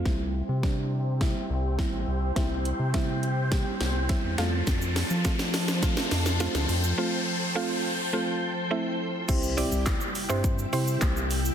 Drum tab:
CC |----------------|----------------|----------------|----------------|
HH |----------------|x-x-x-x-x-x-x-x-|x-o-x-o-x-o-x-o-|----------------|
SH |----------------|----------------|xxxxxxxxxxxxxxxx|----------------|
CP |----------------|----------------|----------------|----------------|
SD |o---o---o---o---|o---o---o-o-o-o-|o-o-oooooooooo--|----------------|
BD |o---o---o---o---|o---o---o---o---|o---o---o-------|----------------|

CC |x---------------|
HH |x-o-x-o-x-o-x-o-|
SH |xxxxxxxxxxxxxxxx|
CP |----x--x----x---|
SD |----o-------o---|
BD |o---o---o---o---|